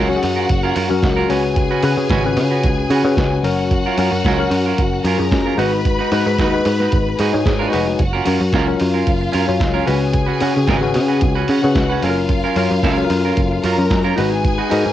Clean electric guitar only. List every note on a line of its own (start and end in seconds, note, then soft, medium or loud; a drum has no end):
0.00 0.17 C#4 medium
0.10 muted clean electric guitar stroke medium
0.22 muted clean electric guitar stroke soft
0.36 0.48 C#4 soft
0.36 0.48 F4 medium
0.36 0.49 A#4 medium
0.49 muted clean electric guitar stroke soft
0.63 0.74 C#4 medium
0.63 0.75 F4 medium
0.63 0.76 A#4 medium
0.76 0.93 C#4 medium
0.76 0.90 F4 medium
0.76 0.89 A#4 medium
0.90 muted clean electric guitar stroke soft
1.03 muted clean electric guitar stroke soft
1.16 1.28 C#4 medium
1.16 1.30 F4 medium
1.16 1.31 A#4 medium
1.30 1.47 C#4 medium
1.30 1.45 F#4 medium
1.30 1.43 B4 medium
1.45 muted clean electric guitar stroke soft
1.57 muted clean electric guitar stroke soft
1.71 1.82 C#4 medium
1.71 1.83 F#4 medium
1.71 1.84 B4 medium
1.83 2.00 C#4 soft
1.83 1.98 F#4 medium
1.83 1.97 B4 medium
1.98 muted clean electric guitar stroke soft
2.10 2.32 C#4 medium
2.10 2.25 F#4 medium
2.10 2.24 B4 medium
2.25 muted clean electric guitar stroke soft
2.36 muted clean electric guitar stroke soft
2.51 2.68 C#4 soft
2.51 2.67 F#4 medium
2.51 2.67 B4 medium
2.78 muted clean electric guitar stroke soft
2.90 3.12 C#4 medium
2.90 3.04 F#4 medium
2.90 3.03 B4 medium
3.04 muted clean electric guitar stroke soft
3.17 muted clean electric guitar stroke soft
3.30 muted clean electric guitar stroke soft
3.59 muted clean electric guitar stroke soft
3.72 muted clean electric guitar stroke soft
3.86 3.98 C#4 medium
3.86 3.99 F4 medium
3.86 3.99 A#4 medium
3.99 4.15 C#4 medium
3.99 4.13 F4 medium
3.99 4.12 A#4 medium
4.13 muted clean electric guitar stroke soft
4.26 4.47 C#4 medium
4.26 4.41 F4 medium
4.26 4.40 A#4 medium
4.41 muted clean electric guitar stroke soft
4.53 muted clean electric guitar stroke soft
4.66 4.82 C#4 soft
4.66 4.82 F4 medium
4.66 4.82 A#4 medium
4.93 muted clean electric guitar stroke soft
5.06 5.27 C#4 medium
5.06 5.19 F4 medium
5.06 5.18 A#4 medium
5.19 muted clean electric guitar stroke soft
5.32 muted clean electric guitar stroke soft
5.46 5.57 C#4 medium
5.46 5.58 F4 medium
5.46 5.59 A#4 medium
5.58 5.79 D#4 medium
5.58 5.73 F#4 medium
5.58 5.72 B4 medium
5.73 muted clean electric guitar stroke soft
5.86 muted clean electric guitar stroke soft
5.99 6.11 D#4 medium
5.99 6.12 F#4 medium
5.99 6.13 B4 medium
6.12 6.29 D#4 medium
6.12 6.27 F#4 medium
6.12 6.26 B4 medium
6.27 muted clean electric guitar stroke soft
6.39 6.61 D#4 medium
6.39 6.55 F#4 medium
6.39 6.54 B4 medium
6.55 muted clean electric guitar stroke soft
6.67 muted clean electric guitar stroke soft
6.80 6.97 D#4 soft
6.80 6.96 F#4 soft
6.80 6.96 B4 medium
7.09 muted clean electric guitar stroke soft
7.20 7.41 D#4 medium
7.20 7.34 F#4 medium
7.20 7.33 B4 medium
7.34 muted clean electric guitar stroke soft
7.47 muted clean electric guitar stroke soft
7.59 7.72 D#4 medium
7.59 7.73 F#4 medium
7.59 7.74 B4 medium
7.73 7.90 D#4 medium
7.73 7.87 F#4 medium
7.73 7.86 B4 medium
7.87 muted clean electric guitar stroke soft
7.99 muted clean electric guitar stroke soft
8.13 8.25 C#4 medium
8.13 8.26 F4 medium
8.13 8.26 A#4 medium
8.27 8.44 C#4 medium
8.27 8.41 F4 medium
8.27 8.40 A#4 medium
8.41 muted clean electric guitar stroke soft
8.54 8.75 C#4 medium
8.54 8.68 F4 medium
8.54 8.67 A#4 medium
8.68 muted clean electric guitar stroke soft
8.81 muted clean electric guitar stroke soft
8.94 9.11 C#4 soft
8.94 9.10 F4 soft
8.94 9.10 A#4 medium
9.21 muted clean electric guitar stroke soft
9.32 9.55 C#4 medium
9.32 9.46 F4 medium
9.32 9.45 A#4 medium
9.46 muted clean electric guitar stroke soft
9.59 muted clean electric guitar stroke soft
9.74 9.85 C#4 medium
9.74 9.86 F4 medium
9.74 9.87 A#4 medium
9.86 10.04 C#4 medium
9.86 10.00 F#4 medium
9.86 9.99 B4 medium
10.01 muted clean electric guitar stroke soft
10.13 muted clean electric guitar stroke soft
10.26 10.40 C#4 medium
10.26 10.41 F#4 medium
10.26 10.41 B4 medium
10.41 10.58 C#4 medium
10.41 10.55 F#4 medium
10.41 10.54 B4 medium
10.55 muted clean electric guitar stroke soft
10.67 10.89 C#4 medium
10.67 10.82 F#4 medium
10.67 10.81 B4 medium
10.82 muted clean electric guitar stroke soft
10.94 muted clean electric guitar stroke soft
11.08 11.20 C#4 soft
11.08 11.20 F#4 medium
11.08 11.21 B4 medium
11.21 muted clean electric guitar stroke soft
11.35 11.48 C#4 medium
11.35 11.49 F#4 medium
11.35 11.50 B4 medium
11.49 11.66 C#4 medium
11.49 11.63 F#4 medium
11.49 11.62 B4 medium
11.63 muted clean electric guitar stroke soft
11.77 muted clean electric guitar stroke soft
11.89 12.03 C#4 medium
11.89 12.04 F#4 medium
11.89 12.05 B4 medium
12.04 12.20 C#4 medium
12.04 12.18 F4 medium
12.04 12.17 A#4 medium
12.18 muted clean electric guitar stroke soft
12.30 muted clean electric guitar stroke soft
12.44 12.56 C#4 medium
12.44 12.56 F4 medium
12.44 12.57 A#4 medium
12.57 12.74 C#4 medium
12.57 12.71 F4 medium
12.57 12.70 A#4 medium
12.71 muted clean electric guitar stroke soft
12.83 13.05 C#4 medium
12.83 12.99 F4 medium
12.83 12.97 A#4 medium
12.98 muted clean electric guitar stroke soft
13.11 muted clean electric guitar stroke soft
13.25 13.41 C#4 soft
13.25 13.41 F4 medium
13.25 13.40 A#4 medium
13.52 muted clean electric guitar stroke soft
13.64 13.85 C#4 medium
13.64 13.78 F4 loud
13.64 13.77 A#4 medium
13.78 muted clean electric guitar stroke soft
13.90 muted clean electric guitar stroke soft
14.04 14.16 C#4 medium
14.04 14.17 F4 medium
14.04 14.17 A#4 medium
14.16 14.34 D#4 medium
14.16 14.31 F#4 medium
14.16 14.30 B4 medium
14.31 muted clean electric guitar stroke soft
14.43 muted clean electric guitar stroke soft
14.58 14.69 D#4 medium
14.58 14.70 F#4 medium
14.58 14.70 B4 medium
14.70 14.88 D#4 medium
14.70 14.85 F#4 medium
14.70 14.84 B4 medium
14.85 muted clean electric guitar stroke soft